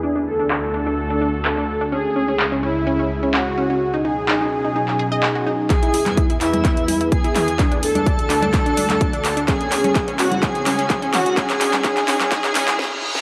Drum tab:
HH |----------------|----------------|----------------|xxoxxxoxxxoxxxox|
CP |----x-------x---|----x-------x---|----x----x--x---|x--x--x-x-----x-|
SD |----------------|----------------|----------------|----------------|
T2 |----------------|----------------|----------------|--------------o-|
CG |----------------|----------------|----------------|---o---o--o-----|
BD |----------------|----------------|----------------|o---o---o---o---|

HH |xxoxxxoxxxoxxxox|xxoxxxoxxxoxxxox|xxoxxxoxxxox----|
CP |x-----x-x--x--x-|x-x-x-x-x-x-x-x-|xxxxxxxxxxxx----|
SD |----------------|----------------|------------o--o|
T2 |----------------|--------------o-|----------------|
CG |---o---o--oo----|---o---o--o-----|---o---o--oo----|
BD |o---o---o---o---|o---o---o---o---|o---o---o-------|